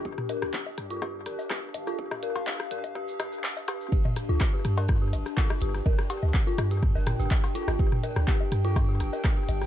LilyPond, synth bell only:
\new Staff \with { instrumentName = "Synth bell" } { \time 4/4 \key c \mixolydian \tempo 4 = 124 g'16 r16 bes'16 r16 g'16 r8 f'16 g'16 r16 bes'16 r16 g'16 r8 f'16 | g'16 r16 bes'16 r16 g'16 r16 bes'16 r16 g'16 r16 g'16 r16 g'16 r16 g'16 r16 | g'16 r8 f'16 r16 g'16 r16 bes'16 r16 g'16 r8 f'16 r16 g'16 r16 | bes'16 r16 g'16 r8 f'16 r16 g'16 r16 bes'16 r16 g'16 r8 f'16 r16 |
g'16 r16 bes'16 r16 g'16 r8 f'16 r16 g'16 r16 bes'16 r16 g'16 r8 | }